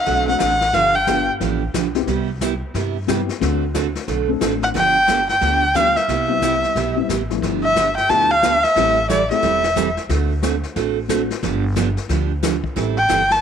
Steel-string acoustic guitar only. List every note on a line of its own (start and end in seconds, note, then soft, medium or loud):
0.06 0.28 D3 medium
0.06 0.28 A3 medium
0.06 0.28 C4 medium
0.06 0.28 F#4 medium
0.06 0.28 A4 medium
0.40 0.51 D3 medium
0.40 0.51 A3 medium
0.40 0.52 C4 medium
0.40 0.52 F#4 medium
0.40 0.52 A4 medium
0.74 0.95 D3 medium
0.74 0.95 F3 medium
0.74 0.95 B3 medium
0.74 0.95 D4 medium
0.74 0.95 G4 medium
1.08 1.19 D3 medium
1.08 1.19 F3 medium
1.08 1.19 B3 medium
1.08 1.19 D4 medium
1.08 1.19 G4 medium
1.41 1.62 D3 medium
1.41 1.62 F3 medium
1.41 1.62 B3 medium
1.41 1.62 D4 medium
1.41 1.62 G4 medium
1.74 1.86 D3 medium
1.74 1.86 F3 medium
1.74 1.86 B3 medium
1.74 1.86 D4 medium
1.74 1.86 G4 medium
2.08 2.29 C3 medium
2.08 2.29 G3 medium
2.08 2.29 B3 medium
2.08 2.29 E4 medium
2.08 2.29 G4 medium
2.41 2.53 C3 medium
2.41 2.53 G3 medium
2.41 2.53 B3 medium
2.41 2.53 E4 medium
2.41 2.53 G4 medium
2.75 2.96 C3 medium
2.75 2.96 G3 medium
2.75 2.96 B3 medium
2.75 2.96 E4 medium
2.75 2.96 G4 medium
3.08 3.19 C3 medium
3.08 3.20 G3 medium
3.08 3.20 B3 medium
3.08 3.20 E4 medium
3.08 3.20 G4 medium
3.42 3.63 D3 medium
3.42 3.63 A3 medium
3.42 3.63 C4 medium
3.42 3.63 F#4 medium
3.42 3.63 A4 medium
3.75 3.86 D3 medium
3.75 3.86 A3 medium
3.75 3.86 C4 medium
3.75 3.86 F#4 medium
3.75 3.87 A4 medium
4.08 4.29 D3 medium
4.08 4.29 A3 medium
4.08 4.29 C4 medium
4.08 4.29 F#4 medium
4.08 4.29 A4 medium
4.41 4.53 D3 medium
4.41 4.53 A3 medium
4.41 4.53 C4 medium
4.41 4.53 F#4 medium
4.41 4.53 A4 medium
4.74 4.96 D3 medium
4.74 4.96 F3 medium
4.74 4.96 B3 medium
4.74 4.96 D4 medium
4.74 4.96 G4 medium
5.08 5.19 D3 medium
5.08 5.19 F3 medium
5.08 5.19 B3 medium
5.08 5.20 D4 medium
5.08 5.20 G4 medium
5.41 5.63 D3 medium
5.41 5.63 F3 medium
5.41 5.63 B3 medium
5.41 5.63 D4 medium
5.41 5.63 G4 medium
5.74 5.86 D3 medium
5.74 5.86 F3 medium
5.74 5.86 B3 medium
5.74 5.87 D4 medium
5.74 5.87 G4 medium
6.09 6.30 C3 medium
6.09 6.30 G3 medium
6.09 6.30 B3 medium
6.09 6.30 E4 medium
6.09 6.30 G4 medium
6.42 6.53 C3 medium
6.42 6.54 G3 medium
6.42 6.54 B3 medium
6.42 6.54 E4 medium
6.42 6.54 G4 medium
6.76 6.97 C3 medium
6.76 6.97 G3 medium
6.76 6.97 B3 medium
6.76 6.97 E4 medium
6.76 6.97 G4 medium
7.10 7.21 C3 medium
7.10 7.21 G3 medium
7.10 7.21 B3 medium
7.10 7.21 E4 medium
7.10 7.21 G4 medium
7.43 7.64 D3 medium
7.43 7.64 F3 medium
7.43 7.64 B3 medium
7.43 7.64 D4 medium
7.43 7.64 G4 medium
7.76 7.87 D3 medium
7.76 7.87 F3 medium
7.76 7.87 B3 medium
7.76 7.87 D4 medium
7.76 7.88 G4 medium
8.09 8.30 D3 medium
8.09 8.31 F3 medium
8.09 8.31 B3 medium
8.09 8.31 D4 medium
8.09 8.31 G4 medium
8.44 8.54 D3 medium
8.44 8.54 F3 medium
8.44 8.55 B3 medium
8.44 8.55 D4 medium
8.44 8.55 G4 medium
8.76 8.97 E3 medium
8.76 8.97 G3 medium
8.76 8.97 C4 medium
8.76 8.98 E4 medium
8.76 8.98 A4 medium
9.09 9.21 E3 medium
9.09 9.21 G3 medium
9.09 9.21 C4 medium
9.09 9.21 E4 medium
9.09 9.21 A4 medium
9.42 9.64 E3 medium
9.42 9.64 G3 medium
9.42 9.64 C4 medium
9.42 9.64 E4 medium
9.42 9.64 A4 medium
9.76 9.87 E3 medium
9.76 9.87 G3 medium
9.76 9.88 C4 medium
9.76 9.88 E4 medium
9.76 9.88 A4 medium
10.10 10.31 D3 medium
10.10 10.31 A3 medium
10.10 10.31 C4 medium
10.10 10.31 F#4 medium
10.10 10.31 A4 medium
10.43 10.54 D3 medium
10.43 10.54 A3 medium
10.43 10.54 C4 medium
10.43 10.54 F#4 medium
10.43 10.55 A4 medium
10.76 10.97 D3 medium
10.76 10.97 A3 medium
10.76 10.97 C4 medium
10.76 10.97 F#4 medium
10.76 10.98 A4 medium
11.09 11.21 D3 medium
11.09 11.21 A3 medium
11.09 11.21 C4 medium
11.09 11.21 F#4 medium
11.09 11.21 A4 medium
11.43 11.64 D3 medium
11.43 11.64 F3 medium
11.43 11.64 B3 medium
11.43 11.64 D4 medium
11.43 11.64 G4 medium
11.76 11.87 D3 medium
11.76 11.87 F3 medium
11.76 11.88 B3 medium
11.76 11.88 D4 medium
11.76 11.88 G4 medium
12.10 12.31 D3 medium
12.10 12.31 F3 medium
12.10 12.31 B3 medium
12.10 12.31 D4 medium
12.10 12.31 G4 medium
12.43 12.54 D3 medium
12.43 12.54 F3 medium
12.43 12.54 B3 medium
12.43 12.54 D4 medium
12.43 12.54 G4 medium
12.76 12.97 E3 medium
12.76 12.97 G3 medium
12.76 12.97 C4 medium
12.76 12.98 E4 medium
12.76 12.98 A4 medium
13.09 13.20 E3 medium
13.09 13.21 G3 medium
13.09 13.21 C4 medium
13.09 13.21 E4 medium
13.09 13.21 A4 medium